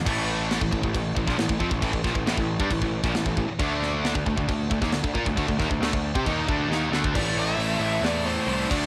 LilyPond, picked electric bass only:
\new Staff \with { instrumentName = "Picked electric bass" } { \clef bass \time 4/4 \key a \phrygian \tempo 4 = 135 a,,4~ a,,16 a,,16 a,,16 a,,16 a,,8 a,,16 bes,,16 a,,16 a,,16 f,16 a,,16 | a,,16 a,,16 bes,,16 a,,16 a,,16 a,,8 g,16 a,,16 a,,8 bes,,16 a,,16 a,,16 a,,16 r16 | d,4~ d,16 d,16 d,16 d,16 d,8 d,16 dis,16 d,16 d,16 bes,16 d,16 | d,16 d,16 dis,16 d,16 d,16 d,8 c16 dis,8 d,8 dis,8 d,8 |
a,,8 a,,8 a,,8 a,,8 e,4 c,8 d,8 | }